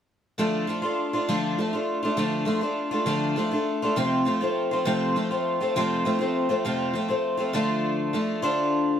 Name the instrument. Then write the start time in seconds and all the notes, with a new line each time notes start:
twelve-string acoustic guitar
0.38 D3 F3 A3 D4 F4
0.67 F3 A3 D4 F4
0.82 A3 D4 F4
1.13 A3 D4 F4
1.29 D3 F3 A3 D4 F4
1.58 F3 A3 D4 F4
1.73 A3 D4 F4
2.03 A3 D4 F4
2.17 D3 F3 A3 D4 F4
2.45 F3 A3 D4 F4
2.61 A3 D4 F4
2.91 A3 D4 F4
3.06 D3 F3 A3 D4 F4
3.36 F3 A3 D4 F4
3.51 A3 D4 F4
3.82 A3 D4 F4
3.96 F2 C3 F3 A3 C4 F4
4.25 F3 A3 C4 F4
4.41 F3 A3 C4 F4
4.71 F3 A3 C4 F4
4.85 F2 C3 F3 A3 C4 F4
5.16 F3 A3 C4 F4
5.31 F3 A3 C4 F4
5.60 F3 A3 C4 F4
5.76 F2 C3 F3 A3 C4 F4
6.05 F3 A3 C4 F4
6.19 F3 A3 C4 F4
6.49 F3 A3 C4 F4
6.65 F2 C3 F3 A3 C4 F4
6.93 F3 A3 C4 F4
7.08 F3 A3 C4 F4
7.37 F3 A3 C4 F4
7.53 D3 F3 A3 D4 F4
8.13 F3 A3 D4 F4
8.42 D3 F3 A3 D4 F4